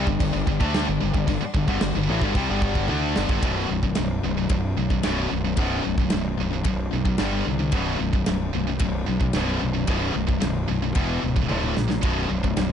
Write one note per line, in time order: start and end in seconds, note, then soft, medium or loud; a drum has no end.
0.00 3.38 D4 medium
0.00 1.26 G4 medium
0.00 3.38 D5 medium
0.06 0.20 G1 medium
0.06 0.18 G2 medium
0.06 0.19 D3 medium
0.06 kick medium
0.19 0.33 G1 medium
0.19 0.31 G2 medium
0.19 0.32 D3 medium
0.19 kick loud
0.19 crash medium
0.33 0.47 G1 medium
0.33 0.46 G2 medium
0.33 0.46 D3 medium
0.47 0.60 G1 medium
0.47 0.61 G2 medium
0.47 0.58 D3 medium
0.47 kick loud
0.60 0.86 D2 medium
0.60 0.86 D3 medium
0.60 0.87 A3 medium
0.60 0.87 D4 loud
0.60 kick medium
0.74 snare loud
0.74 crash medium
0.87 1.01 G1 medium
0.87 1.00 G2 medium
0.87 1.01 D3 medium
1.01 1.14 G1 medium
1.01 1.14 G2 medium
1.01 1.14 D3 medium
1.14 1.27 G1 medium
1.14 1.28 G2 medium
1.14 1.27 D3 medium
1.14 kick medium
1.27 1.40 G1 medium
1.27 1.41 G2 medium
1.27 1.42 D3 medium
1.27 3.40 F#4 medium
1.27 kick loud
1.27 crash medium
1.42 muted fingered electric bass stroke soft
1.42 muted distorted electric guitar stroke medium
1.55 1.67 G1 medium
1.55 1.67 G2 medium
1.55 1.68 D3 medium
1.55 kick medium
1.68 1.81 G1 loud
1.68 1.81 G2 medium
1.68 1.81 D3 loud
1.68 kick medium
1.81 1.94 G1 medium
1.81 1.95 G2 medium
1.81 1.96 D3 medium
1.81 snare loud
1.81 crash medium
1.96 2.08 G1 medium
1.96 2.09 G2 medium
1.96 2.09 D3 medium
2.09 2.21 A1 loud
2.09 2.21 A2 medium
2.09 2.22 E3 loud
2.22 2.34 G1 loud
2.22 2.35 G2 medium
2.22 2.35 D3 medium
2.22 kick medium
2.35 2.48 C2 medium
2.35 2.48 C3 medium
2.35 2.49 G3 medium
2.35 kick medium
2.35 crash medium
2.49 2.87 G1 loud
2.49 2.88 G2 medium
2.49 2.87 D3 loud
2.49 2.89 G3 medium
2.62 kick medium
2.75 kick medium
2.88 3.15 D2 loud
2.88 3.14 D3 medium
2.88 3.15 A3 loud
2.88 3.16 D4 loud
2.88 high tom medium
3.15 3.29 G1 loud
3.15 3.28 G2 medium
3.15 3.28 D3 loud
3.15 snare loud
3.29 3.42 G1 loud
3.29 3.42 G2 medium
3.29 3.42 D3 loud
3.29 kick medium
3.43 3.65 B0 medium
3.43 3.68 B1 medium
3.43 3.68 F#2 medium
3.43 3.69 B2 loud
3.43 kick loud
3.43 ride bell medium
3.70 3.92 B0 medium
3.70 3.83 B1 medium
3.70 3.82 F#2 medium
3.83 3.96 B1 medium
3.83 3.96 F#2 medium
3.83 kick medium
3.95 4.19 B0 medium
3.95 4.21 B1 medium
3.95 4.21 F#2 medium
3.95 snare loud
3.95 ride bell medium
4.23 4.46 B0 medium
4.23 4.36 B1 medium
4.23 4.35 F#2 medium
4.37 4.48 B1 medium
4.37 4.49 F#2 medium
4.49 4.72 B0 medium
4.49 4.74 B1 medium
4.49 4.74 F#2 medium
4.49 kick loud
4.49 ride bell medium
4.77 4.89 B1 medium
4.77 5.00 B1 medium
4.77 4.89 F#2 medium
4.90 5.02 B1 medium
4.90 5.03 F#2 medium
4.90 kick medium
5.03 5.26 B0 loud
5.03 5.29 B1 medium
5.03 5.29 F#2 medium
5.03 5.30 B2 medium
5.03 snare loud
5.03 ride bell medium
5.31 5.54 B0 medium
5.31 5.43 B1 medium
5.31 5.43 F#2 medium
5.44 5.56 B1 medium
5.44 5.57 F#2 medium
5.57 5.80 B0 medium
5.57 5.83 B1 medium
5.57 5.83 F#2 medium
5.57 5.83 B2 loud
5.57 kick loud
5.57 ride bell medium
5.84 6.08 B0 medium
5.84 5.96 B1 medium
5.84 5.96 F#2 medium
5.98 6.09 B1 medium
5.98 6.09 F#2 medium
5.98 kick medium
6.10 6.35 B0 medium
6.10 6.35 B1 medium
6.10 6.35 F#2 medium
6.10 snare loud
6.10 ride bell medium
6.37 6.61 B0 medium
6.37 6.49 B1 medium
6.37 6.49 F#2 medium
6.50 6.62 B1 medium
6.50 6.63 F#2 medium
6.64 6.88 B0 medium
6.64 6.89 B1 medium
6.64 6.89 F#2 medium
6.64 kick loud
6.64 ride bell medium
6.91 7.04 B1 medium
6.91 7.15 B1 medium
6.91 7.03 F#2 medium
7.05 7.18 B1 medium
7.05 7.18 F#2 medium
7.05 kick medium
7.18 7.41 G1 medium
7.18 7.44 G2 medium
7.18 7.44 D3 medium
7.18 7.45 G3 medium
7.18 snare loud
7.18 ride bell medium
7.46 7.69 C2 loud
7.46 7.58 G2 medium
7.46 7.58 D3 medium
7.60 7.73 G2 medium
7.60 7.73 D3 medium
7.72 7.95 B0 medium
7.72 7.98 B1 medium
7.72 7.99 F#2 medium
7.72 7.99 B2 medium
7.72 kick loud
7.72 ride bell medium
8.00 8.22 B0 medium
8.00 8.14 B1 medium
8.00 8.13 F#2 medium
8.13 8.26 B1 medium
8.13 8.27 F#2 medium
8.13 kick medium
8.26 8.49 B0 medium
8.26 8.51 B1 medium
8.26 8.52 F#2 medium
8.26 snare loud
8.26 ride bell medium
8.54 8.76 B0 medium
8.54 8.67 B1 medium
8.54 8.67 F#2 medium
8.68 8.80 B1 medium
8.68 8.80 F#2 medium
8.79 9.03 B0 medium
8.79 9.05 B1 medium
8.79 9.05 F#2 medium
8.79 kick loud
8.79 ride bell medium
9.08 9.30 B1 medium
9.08 9.21 B1 medium
9.08 9.21 F#2 medium
9.21 9.34 B1 medium
9.21 9.35 F#2 medium
9.21 kick medium
9.33 9.57 B0 loud
9.33 9.60 B1 medium
9.33 9.60 F#2 medium
9.33 9.61 B2 loud
9.33 snare loud
9.33 ride bell medium
9.62 9.84 B0 medium
9.62 9.74 B1 medium
9.62 9.74 F#2 medium
9.75 9.87 B1 medium
9.75 9.87 F#2 medium
9.87 10.10 B0 loud
9.87 10.13 B1 medium
9.87 10.13 F#2 medium
9.87 10.14 B2 loud
9.87 kick loud
9.87 ride bell medium
10.14 10.38 B0 medium
10.14 10.27 B1 medium
10.14 10.27 F#2 medium
10.28 10.40 B1 medium
10.28 10.40 F#2 medium
10.28 kick medium
10.41 10.65 B0 medium
10.41 10.66 B1 medium
10.41 10.66 F#2 medium
10.41 snare loud
10.41 ride bell medium
10.68 10.92 B0 medium
10.68 10.81 B1 medium
10.68 10.81 F#2 medium
10.82 10.95 B1 medium
10.82 10.96 F#2 medium
10.95 11.18 E1 medium
10.95 11.21 E2 medium
10.95 11.22 B2 medium
10.95 11.22 E3 loud
10.95 kick loud
10.95 ride bell medium
11.23 11.46 C#1 medium
11.23 11.35 E2 medium
11.23 11.34 B2 medium
11.36 11.48 E2 medium
11.36 11.49 B2 medium
11.36 kick medium
11.48 11.72 D1 medium
11.48 11.74 D2 medium
11.48 11.74 A2 medium
11.48 11.75 D3 medium
11.48 high tom medium
11.63 mid tom medium
11.75 11.99 A#1 medium
11.75 11.88 D2 medium
11.75 11.88 A2 medium
11.75 snare medium
11.89 12.02 D2 medium
11.89 12.03 A2 medium
11.89 snare medium
12.02 12.26 B0 medium
12.02 12.28 B1 medium
12.02 12.29 F#2 loud
12.02 12.29 B2 loud
12.02 kick loud
12.02 ride bell medium
12.30 12.53 B0 medium
12.30 12.43 B1 medium
12.30 12.42 F#2 medium
12.43 12.55 B1 medium
12.43 12.55 F#2 medium
12.43 kick medium
12.56 12.72 B0 medium
12.56 12.72 B1 medium
12.56 12.72 F#2 medium
12.56 snare loud
12.56 ride bell medium